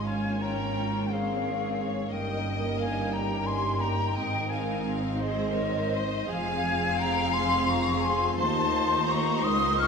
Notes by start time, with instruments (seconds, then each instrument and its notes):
Already playing: double bass section G#1, cello section G#2
0.06 french horn section A#3 C#4, viola section C#4 F4, violin section C#5 F5, flute G#5
0.40 violin section G5, flute A#5
1.09 viola section C4 G#4, violin section C5 C#5, flute F5
1.43 violin section A#4
1.78 violin section C#5
2.10 double bass section G1, cello section G2, viola section A#3 A#4, french horn section C#4 D#4, violin section D#5, flute G5
2.78 violin section F5, flute G#5
3.12 viola section A#3 G4, violin section A#4 G5, flute A#5
3.46 violin section G#5, flute C6
3.80 violin section G5, flute A#5
4.15 double bass section G#1, cello section G#2, viola section C4 D#4, french horn section C4, violin section D#5, flute G5
4.49 violin section F5, flute G#5
5.20 viola section G#4, violin section C5, flute D#5
5.55 viola section A#4, violin section C#5
5.92 viola section C5, violin section D#5
6.28 double bass section F1, cello section F2, viola section C4 G#4, french horn section C4 F4, violin section F5, flute G#5
6.98 violin section G5, flute A#5
7.31 viola section G#4, violin section G#5, flute C6
7.67 violin section A#5, flute C#6
8.03 violin section G#5, flute C6
8.37 double bass section D#2, cello section D#2, french horn section A3, viola section D#4 C5, violin section C5 A5, flute C6
9.07 violin section A#5, flute C#6
9.43 double bass section C#2, cello section C#2, french horn section A#3, viola section A#4, violin section C6, flute D#6
9.79 violin section C#6, flute F6